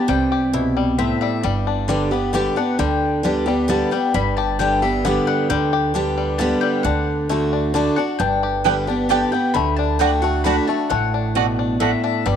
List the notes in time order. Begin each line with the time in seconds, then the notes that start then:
Already playing: G4
0.08 C2 C3 G3 G5
0.32 G4
0.53 B2 E4
0.77 G3
0.99 A2 C4 E5
1.21 G3 E5
1.43 G1 G2 G3 D5
1.67 D4
1.88 D3 G3 B3 G4 D5
2.11 B3 G4
2.33 D3 G3 B3 G4 D5
2.56 B3 D4 G4 F#5
2.79 D2 D3 G3 G5
3.23 D3 G3 B3 D4 G4
3.46 G3 B3 G4
3.68 D3 G3 B3 G4 A5
3.91 G3 B3 G4 G5
4.14 G1 G2 G3 B5
4.37 G4 A5
4.59 D3 G3 B3 D4 G4 G5
4.82 G3 B3 G4 E5
5.05 D3 G3 B3 G4 D5
5.27 G3 F#5
5.50 D2 D3 G3 G5
5.73 G4
5.94 D3 G3 B3 D4 G4
6.18 G3
6.38 D3 G3 B3 G4 A5
6.61 G3 G5
6.83 D2 D3 D4 F#5
7.29 D3 A3 D4 F#4
7.53 D4
7.74 D3 A3 D4 F#4 D5
7.96 D4 F#4 F#5
8.19 G1 G2 D4 G5
8.43 G4
8.64 D3 G3 B3 G4 D5 G5
8.87 B3 D4 G4
9.09 D3 G3 B3 G4 D5 G5 A5
9.32 B3 G4 G5
9.54 D2 D3 A3 B5
9.77 D4 A5
9.99 D3 A3 D4 F#4 D5 F#5 G5
10.22 A3 D4 F#4 F#5
10.44 D3 A3 D4 F#4 D5 F#5 B5
10.67 A3 D4 F#4 A5
10.90 A1 A2 A3 F#5
11.14 D4
11.35 B2 A3 F#4 D5 F#5
11.59 D4
11.80 A2 A3 F#4 D5 E5 F#5
12.04 D4 E5
12.26 G1 G2 G3 D5